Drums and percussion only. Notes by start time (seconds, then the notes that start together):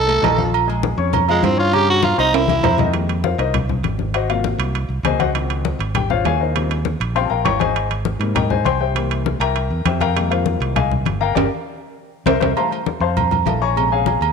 0.09 high conga, low agogo
0.24 high conga, low timbale, low agogo
0.38 high conga
0.54 high conga, low agogo
0.69 high conga, low agogo
0.83 high conga
0.98 high conga
1.13 high conga, low conga, low agogo
1.28 high conga, low agogo
1.43 high conga, low timbale, low agogo
1.73 high conga, low agogo
1.88 high conga
2.03 high conga, low agogo
2.19 low agogo
2.33 high conga, high timbale
2.48 high conga, low agogo
2.63 low conga, low timbale, low agogo
2.78 low conga, low timbale
2.94 high conga, high timbale
3.09 high conga, high timbale
3.24 high conga
3.39 high conga, high timbale
3.54 high conga, low conga, high timbale
3.69 high conga, low conga
3.84 high conga, high timbale
3.99 high conga
4.14 high conga, high timbale
4.29 high conga, high timbale
4.44 high conga
4.60 high timbale
4.75 high conga, high timbale
4.90 high conga
5.05 high conga, high timbale
5.20 high conga, high timbale
5.35 high conga, high timbale
5.50 high conga, high timbale
5.65 high conga
5.80 high conga, high timbale
5.95 high conga, low conga, high timbale
6.10 high conga, low conga
6.25 high conga, high timbale, low timbale
6.55 high conga, high timbale
6.71 high conga, high timbale
6.85 high conga
7.01 high timbale
7.16 high conga, high timbale
7.31 high conga
7.45 high conga, high timbale, low timbale
7.60 high conga, high timbale
7.75 high conga, high timbale
7.91 high conga, high timbale
8.05 high conga
8.20 high conga, high timbale
8.36 high conga, low conga, high timbale
8.50 high conga, low conga
8.66 high conga, high timbale
8.96 high conga, high timbale
9.11 high conga, high timbale
9.26 high conga
9.41 high timbale
9.56 high conga, high timbale
9.71 high conga
9.85 high conga, high timbale
10.01 high conga, high timbale
10.16 high conga, high timbale
10.31 high conga, high timbale
10.46 high conga
10.61 high conga, high timbale
10.76 high conga, low conga, high timbale
10.91 high conga, low conga
11.06 high conga, high timbale
11.36 high conga, high timbale
12.26 high conga, high timbale
12.41 high conga, high timbale
12.56 high conga, low agogo
12.71 high conga, low agogo
12.86 high conga
13.02 high conga
13.17 high conga, low conga, low agogo
13.31 high conga, low conga, low agogo
13.46 high conga, low timbale, low agogo
13.76 high conga, low agogo
13.91 high conga
14.06 high conga, low agogo
14.22 low agogo